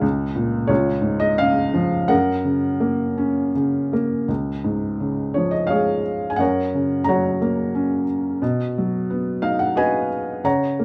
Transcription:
0.01 0.67 C#2 medium
0.36 0.69 A#2 soft
0.67 2.05 C#2 medium
0.67 1.71 F4 medium
0.67 1.17 C#5 medium
1.02 2.06 G#2 medium
1.20 1.39 D#5 medium
1.38 2.07 C#3 medium
1.38 2.11 F5 medium
1.74 2.08 F3 medium
2.08 4.25 F#2 medium
2.08 3.50 A#4 medium
2.08 3.50 F#5 medium
2.44 3.54 C#3 medium
2.80 3.92 A#3 medium
3.18 4.26 C#4 medium
3.55 4.27 C#3 medium
3.93 4.28 A#3 medium
4.28 6.35 C#2 soft
4.64 6.01 G#2 soft
5.00 6.36 C#3 soft
5.34 6.37 F3 soft
5.34 5.53 C#5 medium
5.51 5.70 D#5 medium
5.67 6.36 G#4 soft
5.67 6.36 C#5 soft
5.67 6.27 F5 medium
5.71 6.38 G#3 soft
6.30 6.38 G#5 medium
6.36 8.37 F#2 medium
6.36 7.37 A#4 medium
6.36 7.07 C#5 medium
6.36 7.02 F#5 medium
6.74 8.04 C#3 soft
7.04 8.02 A#5 medium
7.09 8.38 F#3 soft
7.09 8.04 C#5 medium
7.09 8.05 F#5 medium
7.42 8.39 A#3 medium
7.75 8.40 C#4 medium
8.42 10.40 B2 medium
8.78 10.07 F#3 soft
9.10 10.41 B3 medium
9.42 10.41 D#4 medium
9.42 9.58 F5 medium
9.59 9.77 F#5 medium
9.76 10.42 F#4 medium
9.76 10.41 B4 medium
9.76 10.41 D#5 medium
9.76 10.47 G#5 medium
10.44 10.85 C#3 medium
10.44 10.85 C#5 medium
10.44 10.85 F#5 medium
10.44 10.85 A#5 medium
10.79 10.85 A#3 soft

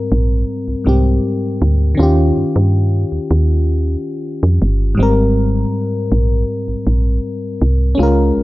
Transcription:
0.00 0.80 G#2 medium
0.00 0.82 G3 medium
0.00 0.83 C4 medium
0.00 0.84 A#4 medium
0.12 0.45 A#1 medium
0.68 0.75 C2 soft
0.84 1.20 C2 medium
0.84 1.98 G#2 medium
0.84 1.99 G3 medium
0.84 1.99 C4 medium
0.88 2.00 G4 medium
1.62 1.95 D2 loud
1.95 4.93 D#3 medium
1.95 4.94 C#4 medium
1.99 2.32 D#2 loud
1.99 4.95 F4 medium
1.99 4.97 G4 medium
2.37 2.44 G2 soft
2.56 3.05 G2 medium
3.12 3.19 D#2 soft
3.31 3.97 D#2 loud
4.43 4.59 F2 medium
4.62 4.95 G1 loud
4.95 7.93 G#2 medium
4.95 7.94 G3 medium
4.99 5.65 G#1 loud
4.99 7.95 C4 medium
4.99 7.97 A#4 medium
6.12 6.45 A#1 medium
6.68 6.75 A#1 soft
6.87 7.20 A#1 medium
7.62 7.95 C2 medium
7.95 8.43 G#3 medium
7.95 8.43 C#4 medium
7.99 8.32 C#2 loud
7.99 8.43 F4 medium
7.99 8.43 A#4 medium
8.37 8.43 A#1 soft

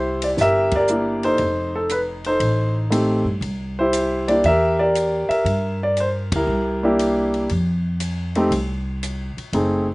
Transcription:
0.00 0.33 C2 medium
0.00 0.70 E4 medium
0.00 0.40 G4 medium
0.00 0.24 C5 medium
0.22 0.29 D5 medium
0.22 ride medium
0.37 1.35 G1 medium
0.37 snare soft
0.41 0.75 G4 medium
0.41 0.75 A#4 medium
0.41 0.72 E5 loud
0.71 kick medium
0.71 ride medium
0.76 0.90 G4 medium
0.76 1.37 A#4 medium
0.76 1.26 D5 medium
0.88 1.40 A#3 soft
0.88 1.40 D4 soft
0.88 1.40 E4 soft
0.88 1.41 G4 medium
0.88 hi-hat pedal medium
1.23 2.22 D#4 medium
1.23 1.74 A4 medium
1.23 1.76 C5 medium
1.23 ride soft
1.38 2.37 F1 medium
1.38 ride soft
1.75 1.91 A4 medium
1.89 1.99 B4 medium
1.89 hi-hat pedal medium
1.89 ride medium
2.24 2.90 D#4 medium
2.24 3.24 A4 medium
2.24 2.73 C5 medium
2.24 ride soft
2.40 3.22 A1 medium
2.40 ride medium
2.90 3.23 A3 medium
2.90 3.23 C4 medium
2.90 3.23 D#4 soft
2.90 3.24 G4 medium
2.90 hi-hat pedal medium
2.90 ride medium
3.25 3.40 G2 medium
3.41 4.40 C2 medium
3.41 ride medium
3.79 4.28 E4 medium
3.79 4.28 G4 medium
3.79 4.31 C5 medium
3.93 hi-hat pedal medium
3.93 ride medium
4.28 4.43 A#3 medium
4.28 4.43 D4 medium
4.28 4.43 E4 medium
4.28 4.43 G4 medium
4.28 4.45 D5 medium
4.28 ride soft
4.44 5.26 E2 medium
4.44 4.79 G4 medium
4.44 4.81 E5 loud
4.44 ride soft
4.48 4.79 A#4 medium
4.79 5.43 G4 medium
4.79 5.29 A#4 medium
4.79 5.32 D5 medium
4.95 hi-hat pedal soft
4.95 ride medium
5.29 6.28 A#4 medium
5.29 5.77 E5 medium
5.29 muted upright bass stroke soft
5.29 ride soft
5.45 6.27 G2 medium
5.45 ride medium
5.83 5.99 D5 medium
5.97 6.08 C5 medium
5.97 hi-hat pedal soft
5.97 ride soft
6.32 6.46 D2 medium
6.32 6.83 E4 soft
6.32 6.83 G4 medium
6.32 6.82 A#4 medium
6.32 kick medium
6.32 ride medium
6.47 7.45 C2 medium
6.83 7.47 A#3 medium
6.83 7.47 D4 medium
6.83 7.47 E4 medium
6.83 7.48 G4 medium
6.99 hi-hat pedal soft
6.99 ride medium
7.34 ride soft
7.49 8.48 F2 medium
7.49 ride medium
8.00 hi-hat pedal medium
8.00 ride medium
8.35 8.50 A3 medium
8.35 8.50 C4 medium
8.35 8.51 D#4 medium
8.35 8.51 G4 medium
8.35 ride soft
8.51 9.33 C2 medium
8.51 ride medium
9.03 hi-hat pedal medium
9.03 ride medium
9.37 muted upright bass stroke soft
9.37 ride soft
9.53 9.95 F#1 medium
9.53 9.85 A3 medium
9.53 9.85 C4 medium
9.53 9.86 D#4 soft
9.53 9.86 G#4 medium
9.53 ride medium

